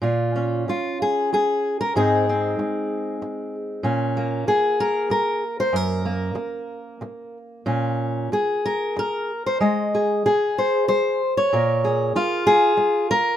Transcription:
0.02 0.68 A#2 medium
0.02 0.68 F4 soft
0.36 1.92 C#4 soft
0.68 1.01 F4 medium
0.68 muted steel-string acoustic guitar stroke medium
1.02 1.32 G#4 medium
1.32 1.80 G#4 medium
1.32 muted steel-string acoustic guitar stroke medium
1.81 1.96 A#4 medium
1.95 2.58 G#2 medium
1.95 3.82 G#3 soft
1.95 2.28 C4 soft
1.95 3.82 D#4 soft
1.95 3.55 G#4 medium
2.29 3.82 C4 soft
2.59 muted steel-string acoustic guitar stroke medium
3.22 muted steel-string acoustic guitar stroke medium
3.83 4.46 A#2 medium
3.83 4.48 C#4 soft
4.17 6.05 A#3 soft
4.47 5.43 G#4 medium
4.47 muted steel-string acoustic guitar stroke medium
4.80 5.10 A#4 medium
5.10 5.59 A#4 medium
5.10 muted steel-string acoustic guitar stroke medium
5.60 5.76 C5 medium
5.73 6.34 F#2 medium
5.73 7.37 A#4 medium
6.05 9.63 A#3 soft
6.35 muted steel-string acoustic guitar stroke medium
7.01 muted steel-string acoustic guitar stroke medium
7.66 8.31 A#2 medium
7.66 8.33 C#4 soft
8.32 9.31 G#4 medium
8.32 muted steel-string acoustic guitar stroke medium
8.65 8.98 A#4 medium
8.96 9.46 A#4 medium
8.96 muted steel-string acoustic guitar stroke soft
9.46 9.61 C5 medium
9.60 10.26 G#3 medium
9.60 10.57 D#5 soft
9.95 10.26 G#4 soft
10.26 11.21 G#4 medium
10.26 muted steel-string acoustic guitar stroke medium
10.58 10.87 C5 medium
10.88 11.36 C5 medium
10.88 muted steel-string acoustic guitar stroke medium
11.37 12.16 C#5 medium
11.53 12.15 A#2 medium
11.53 12.46 A#4 soft
11.84 12.47 G#4 soft
12.15 13.10 F4 medium
12.15 muted steel-string acoustic guitar stroke medium
12.47 13.09 G#4 medium
12.77 muted steel-string acoustic guitar stroke medium
13.11 13.37 A#4 medium

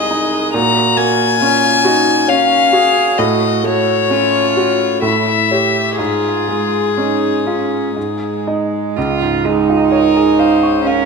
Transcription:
0.00 0.49 C2 soft
0.00 0.56 C3 soft
0.00 0.55 G#3 soft
0.00 0.11 D#4 soft
0.00 0.57 G#4 medium
0.00 0.36 D#5 soft
0.00 0.53 D#5 medium
0.11 0.54 D#4 soft
0.54 3.15 A#2 medium
0.54 1.41 F#4 medium
0.54 0.99 A#5 medium
0.97 1.67 A#3 soft
0.97 2.30 G#5 medium
1.41 2.11 C#4 soft
1.41 1.87 F4 medium
1.85 2.31 D#4 medium
1.85 2.55 F#4 soft
2.28 2.75 C#4 soft
2.28 3.00 C#5 soft
2.28 3.19 F5 medium
2.73 3.18 F#4 soft
2.73 3.20 G#4 medium
3.18 4.99 A2 medium
3.18 4.13 F#4 medium
3.18 3.66 D#5 medium
3.64 4.37 A3 soft
3.64 5.02 C#5 medium
4.10 4.84 C#4 soft
4.10 5.04 F4 medium
4.57 5.03 F#4 soft
5.02 5.96 A2 soft
5.02 5.52 E4 soft
5.02 5.97 E5 medium
5.51 6.00 G4 soft
5.51 5.95 G4 soft
5.51 5.95 C#5 soft
5.98 7.92 G#2 soft
5.98 6.88 F4 soft
5.98 8.42 G#4 medium
6.48 7.28 G#3 soft
6.97 7.76 C#4 soft
6.97 7.48 D#4 soft
7.46 7.95 C#4 soft
7.46 7.96 F4 soft
7.95 8.93 G#2 soft
7.95 8.98 G#3 medium
8.47 8.93 D#4 soft
8.47 8.93 D#5 soft
8.97 11.05 C#2 soft
8.97 9.46 F4 medium
9.22 9.59 G#2 soft
9.44 9.83 G#3 soft
9.44 10.85 D#4 medium
9.70 10.07 F4 soft
9.91 10.40 A#4 medium
9.91 10.30 C#5 soft
10.16 10.54 G#4 soft
10.39 10.89 C5 soft
10.39 10.77 F5 soft
10.63 11.01 C#6 soft
10.86 11.05 C#4 medium
10.86 11.05 A#4 medium
10.86 11.05 F5 soft

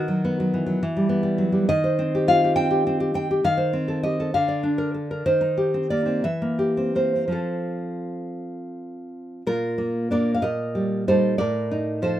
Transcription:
0.00 0.78 D#3 medium
0.00 1.23 F#4 medium
0.08 0.39 F#3 medium
0.25 0.82 B3 medium
0.40 0.65 F#3 soft
0.54 0.81 E3 soft
0.66 0.81 F#3 soft
0.83 1.65 E3 medium
0.97 1.22 G3 medium
1.09 1.66 B3 medium
1.23 1.51 G3 soft
1.38 1.66 F#3 soft
1.52 1.66 G3 soft
1.69 3.40 D#3 medium
1.69 2.24 D#5 loud
1.84 2.70 C5 medium
1.99 2.55 C4 medium
2.15 2.43 G4 medium
2.28 3.14 F4 soft
2.28 2.55 F5 medium
2.44 2.69 G4 soft
2.56 2.86 C4 medium
2.56 3.11 G5 medium
2.71 2.99 G4 soft
2.87 3.13 C4 medium
3.00 3.30 G4 medium
3.14 3.43 C4 soft
3.14 3.42 G5 medium
3.31 3.44 G4 medium
3.44 4.32 D#3 medium
3.44 4.02 F5 medium
3.58 4.34 C5 medium
3.73 4.34 C4 medium
3.88 4.04 A4 soft
4.03 4.19 G4 soft
4.03 4.33 D#5 medium
4.20 4.34 A4 soft
4.34 5.22 D3 medium
4.34 5.21 F5 medium
4.48 5.24 D5 medium
4.63 5.24 D4 soft
4.78 4.94 A#4 medium
4.94 5.10 A4 soft
5.11 5.25 A#4 soft
5.26 6.21 D#3 medium
5.26 5.88 C5 medium
5.41 6.05 D#4 soft
5.58 6.24 G4 soft
5.74 5.91 C4 soft
5.90 6.24 A#3 soft
5.90 6.22 D5 medium
6.06 6.23 C4 soft
6.24 7.26 E3 medium
6.24 6.90 E5 medium
6.42 6.94 A#3 soft
6.59 7.29 G4 soft
6.77 7.14 C4 soft
6.95 7.27 A#3 soft
6.95 7.29 C5 medium
7.16 7.28 C4 soft
7.28 9.41 F3 soft
7.28 9.42 C4 soft
7.28 9.43 F4 soft
7.32 9.08 A4 medium
9.47 10.40 A#2 medium
9.47 10.08 F4 medium
9.47 10.09 A#4 medium
9.78 10.11 A#3 medium
10.11 10.40 A#3 soft
10.11 10.39 D4 soft
10.11 10.35 A#4 medium
10.11 10.34 D5 medium
10.34 10.42 F5 medium
10.42 11.35 A#2 medium
10.42 11.03 A#4 medium
10.42 11.03 D#5 medium
10.75 11.07 G3 soft
11.08 11.36 G3 soft
11.08 11.36 D#4 soft
11.08 11.38 A4 medium
11.08 11.38 C5 medium
11.38 12.20 A2 medium
11.38 11.99 A#4 medium
11.38 12.00 D5 medium
11.71 12.20 D#4 medium
12.02 12.20 F3 medium
12.02 12.20 A4 medium
12.02 12.20 C5 medium

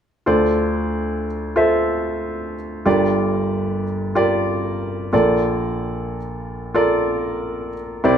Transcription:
0.26 2.82 D2 medium
0.26 2.82 D3 medium
0.26 1.25 F4 medium
0.26 1.25 A4 medium
0.26 1.25 C5 medium
0.26 1.25 D5 medium
1.56 2.54 F4 medium
1.56 2.55 A4 medium
1.56 2.55 C5 medium
1.56 2.55 E5 medium
2.85 5.09 G1 medium
2.85 5.09 G2 medium
2.85 3.84 F4 medium
2.85 3.84 G4 medium
2.85 3.84 A#4 medium
2.85 3.85 D5 medium
4.15 5.11 F4 medium
4.15 5.13 G4 medium
4.15 5.12 A#4 medium
4.15 5.12 D5 medium
5.13 7.68 A#1 medium
5.13 7.68 A#2 medium
5.13 6.16 F4 medium
5.13 6.17 A4 medium
5.13 6.17 A#4 medium
5.13 6.17 D5 medium
6.74 7.73 F4 medium
6.74 7.73 A4 medium
6.74 7.73 A#4 medium
6.74 7.73 D5 medium
8.04 8.18 C2 medium
8.04 8.18 C3 medium
8.04 8.18 E4 medium
8.04 8.18 G4 medium
8.04 8.18 C5 medium
8.04 8.18 D5 medium

